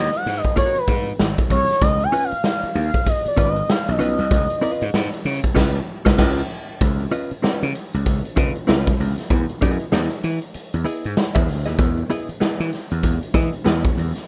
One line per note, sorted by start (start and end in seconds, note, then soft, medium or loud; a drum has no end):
0.00 0.18 D#5 loud
0.13 0.39 F#5 loud
0.13 closed hi-hat soft
0.26 0.40 G#2 medium
0.26 snare soft
0.26 open hi-hat medium
0.37 0.57 D#5 medium
0.44 kick medium
0.44 closed hi-hat medium
0.56 0.79 B3 medium
0.56 0.79 F#4 medium
0.56 0.79 A#4 loud
0.56 0.80 C#5 loud
0.56 0.80 D#5 medium
0.56 kick medium
0.56 closed hi-hat medium
0.76 1.09 B4 medium
0.76 closed hi-hat medium
0.87 1.12 G#2 loud
0.87 kick medium
0.87 closed hi-hat medium
1.06 closed hi-hat soft
1.19 1.34 G#1 medium
1.19 snare loud
1.38 kick loud
1.38 closed hi-hat medium
1.50 1.65 C2 medium
1.50 1.84 C#5 loud
1.50 kick medium
1.50 closed hi-hat medium
1.69 snare soft
1.69 closed hi-hat medium
1.82 2.06 C#2 loud
1.82 2.05 D#5 loud
1.82 kick loud
1.82 closed hi-hat medium
2.00 2.26 G#5 loud
2.00 closed hi-hat soft
2.12 2.31 C#4 medium
2.12 2.32 F4 loud
2.12 2.32 B4 loud
2.12 2.32 D#5 medium
2.12 closed hi-hat medium
2.24 2.76 F5 loud
2.31 muted slap bass stroke medium
2.31 closed hi-hat soft
2.44 snare loud
2.63 muted slap bass stroke soft
2.63 closed hi-hat medium
2.75 2.90 D#2 medium
2.75 3.09 F5 medium
2.75 open hi-hat medium
2.94 kick medium
2.94 closed hi-hat medium
3.06 3.27 D#5 loud
3.06 kick medium
3.06 closed hi-hat loud
3.26 3.50 D5 medium
3.26 muted slap bass stroke soft
3.26 closed hi-hat medium
3.36 3.61 G#1 loud
3.36 3.56 C#4 medium
3.36 3.56 F4 medium
3.36 3.57 B4 medium
3.36 3.57 D#5 medium
3.36 kick loud
3.36 closed hi-hat medium
3.49 3.71 D#5 medium
3.56 closed hi-hat soft
3.69 3.92 F5 medium
3.69 snare loud
3.88 3.98 B1 medium
3.88 5.46 D#5 loud
3.88 closed hi-hat medium
3.99 4.14 B1 loud
3.99 4.18 C#4 loud
3.99 4.19 F4 medium
3.99 4.19 B4 loud
3.99 4.19 D#5 loud
3.99 closed hi-hat medium
4.18 4.28 C2 medium
4.18 closed hi-hat medium
4.31 4.46 C#2 loud
4.31 kick loud
4.31 closed hi-hat medium
4.50 closed hi-hat soft
4.61 4.84 C#4 medium
4.61 4.85 F4 loud
4.61 4.85 B4 loud
4.61 4.85 D#5 loud
4.61 closed hi-hat medium
4.81 4.91 G#2 medium
4.81 closed hi-hat soft
4.94 5.08 G#2 loud
4.94 snare medium
5.13 closed hi-hat medium
5.25 5.39 C#3 loud
5.25 snare soft
5.25 open hi-hat medium
5.44 kick medium
5.44 closed hi-hat medium
5.55 5.79 C#2 loud
5.55 5.78 C#4 medium
5.55 5.78 F4 loud
5.55 5.78 B4 loud
5.55 5.78 D#5 loud
5.55 kick loud
5.55 snare loud
5.55 crash medium
6.05 6.17 C#2 loud
6.05 6.16 C#4 medium
6.05 6.16 F4 loud
6.05 6.17 B4 medium
6.05 6.17 D#5 loud
6.05 kick loud
6.05 snare loud
6.17 6.41 C#2 medium
6.17 6.40 C#4 medium
6.17 6.41 F4 loud
6.17 6.41 B4 loud
6.17 6.41 D#5 loud
6.17 kick loud
6.17 snare medium
6.17 crash medium
6.81 7.05 C#2 loud
6.81 kick loud
6.81 closed hi-hat medium
7.00 closed hi-hat soft
7.11 7.31 C#4 medium
7.11 7.31 F4 medium
7.11 7.31 B4 medium
7.11 7.31 D#5 medium
7.11 closed hi-hat medium
7.31 muted slap bass stroke medium
7.31 closed hi-hat soft
7.42 7.65 C#4 medium
7.42 7.66 F4 medium
7.42 7.66 B4 medium
7.42 7.66 D#5 medium
7.42 muted slap bass stroke soft
7.42 snare medium
7.63 7.72 C#3 loud
7.63 closed hi-hat medium
7.75 closed hi-hat medium
7.93 8.03 C#2 medium
7.93 closed hi-hat medium
8.06 8.20 C#2 medium
8.06 kick medium
8.06 closed hi-hat medium
8.25 closed hi-hat medium
8.36 8.51 C#3 medium
8.36 8.55 C#4 medium
8.36 8.56 F4 medium
8.36 8.56 B4 medium
8.36 8.56 D#5 medium
8.36 kick loud
8.36 closed hi-hat medium
8.56 closed hi-hat soft
8.67 8.92 C#2 medium
8.67 8.90 C#4 medium
8.67 8.90 F4 medium
8.67 8.90 B4 medium
8.67 8.91 D#5 medium
8.67 snare loud
8.87 kick loud
8.87 closed hi-hat medium
9.00 9.14 C#2 loud
9.00 open hi-hat medium
9.18 snare soft
9.18 closed hi-hat medium
9.30 9.44 E2 loud
9.30 kick loud
9.30 closed hi-hat medium
9.49 closed hi-hat medium
9.61 9.76 F#2 medium
9.61 9.84 B3 medium
9.61 9.84 E4 medium
9.61 9.84 G#4 medium
9.61 9.84 D#5 loud
9.61 kick loud
9.61 closed hi-hat medium
9.79 closed hi-hat soft
9.92 10.07 E2 loud
9.92 10.14 B3 medium
9.92 10.15 E4 medium
9.92 10.15 G#4 medium
9.92 10.15 D#5 medium
9.92 snare medium
10.11 closed hi-hat medium
10.23 10.38 E3 medium
10.23 closed hi-hat medium
10.41 closed hi-hat medium
10.54 muted slap bass stroke soft
10.54 closed hi-hat medium
10.74 10.83 E2 medium
10.74 closed hi-hat soft
10.84 11.04 B3 medium
10.84 11.04 E4 medium
10.84 11.04 G#4 medium
10.84 11.05 D#5 medium
10.84 closed hi-hat medium
11.04 11.15 G#2 medium
11.04 closed hi-hat soft
11.17 snare loud
11.35 11.49 E2 medium
11.35 11.48 B3 medium
11.35 11.48 E4 medium
11.35 11.48 G#4 medium
11.35 11.48 E5 medium
11.35 kick loud
11.35 closed hi-hat medium
11.48 11.67 D2 loud
11.48 open hi-hat medium
11.66 11.76 D#2 medium
11.66 11.77 B3 soft
11.66 11.77 E4 medium
11.66 11.76 G#4 soft
11.66 11.76 D#5 medium
11.66 snare soft
11.66 closed hi-hat medium
11.78 12.02 E2 loud
11.78 kick loud
11.78 closed hi-hat medium
11.98 closed hi-hat soft
12.10 12.29 B3 loud
12.10 12.29 E4 loud
12.10 12.29 G#4 loud
12.10 12.29 D#5 loud
12.10 closed hi-hat medium
12.29 muted slap bass stroke soft
12.29 closed hi-hat medium
12.40 12.60 B3 medium
12.40 12.60 E4 medium
12.40 12.60 G#4 medium
12.40 12.60 D#5 medium
12.40 muted slap bass stroke soft
12.40 snare medium
12.60 12.70 E3 medium
12.60 closed hi-hat medium
12.73 snare soft
12.73 closed hi-hat medium
12.91 13.01 E2 medium
12.91 closed hi-hat medium
13.03 13.18 E2 medium
13.03 kick medium
13.03 closed hi-hat loud
13.23 closed hi-hat medium
13.34 13.49 E3 medium
13.34 13.53 B3 medium
13.34 13.53 E4 medium
13.34 13.53 G#4 medium
13.34 13.54 D#5 medium
13.34 kick loud
13.34 closed hi-hat medium
13.53 closed hi-hat medium
13.64 13.89 E2 medium
13.64 13.84 B3 loud
13.64 13.84 E4 medium
13.64 13.84 G#4 medium
13.64 13.84 D#5 loud
13.64 snare loud
13.84 kick loud
13.84 closed hi-hat medium
13.97 14.11 E2 medium
13.97 open hi-hat medium
14.15 snare soft
14.15 closed hi-hat medium